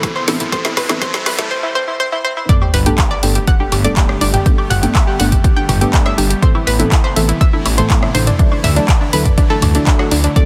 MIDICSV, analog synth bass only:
0, 0, Header, 1, 2, 480
1, 0, Start_track
1, 0, Key_signature, 1, "major"
1, 0, Tempo, 491803
1, 512, Time_signature, 4, 2, 24, 8
1, 10203, End_track
2, 0, Start_track
2, 0, Title_t, "Analog synth bass"
2, 0, Program_c, 0, 38
2, 2672, Note_on_c, 0, 31, 104
2, 2828, Note_off_c, 0, 31, 0
2, 3152, Note_on_c, 0, 31, 81
2, 3308, Note_off_c, 0, 31, 0
2, 3632, Note_on_c, 0, 31, 105
2, 3788, Note_off_c, 0, 31, 0
2, 4113, Note_on_c, 0, 31, 86
2, 4268, Note_off_c, 0, 31, 0
2, 4593, Note_on_c, 0, 31, 100
2, 4748, Note_off_c, 0, 31, 0
2, 5072, Note_on_c, 0, 31, 80
2, 5228, Note_off_c, 0, 31, 0
2, 5552, Note_on_c, 0, 31, 107
2, 5707, Note_off_c, 0, 31, 0
2, 6033, Note_on_c, 0, 31, 91
2, 6188, Note_off_c, 0, 31, 0
2, 6512, Note_on_c, 0, 33, 98
2, 6668, Note_off_c, 0, 33, 0
2, 6992, Note_on_c, 0, 33, 79
2, 7148, Note_off_c, 0, 33, 0
2, 7472, Note_on_c, 0, 33, 107
2, 7628, Note_off_c, 0, 33, 0
2, 7951, Note_on_c, 0, 33, 89
2, 8107, Note_off_c, 0, 33, 0
2, 8431, Note_on_c, 0, 38, 105
2, 8587, Note_off_c, 0, 38, 0
2, 8912, Note_on_c, 0, 38, 78
2, 9068, Note_off_c, 0, 38, 0
2, 9392, Note_on_c, 0, 38, 87
2, 9548, Note_off_c, 0, 38, 0
2, 9873, Note_on_c, 0, 38, 94
2, 10028, Note_off_c, 0, 38, 0
2, 10203, End_track
0, 0, End_of_file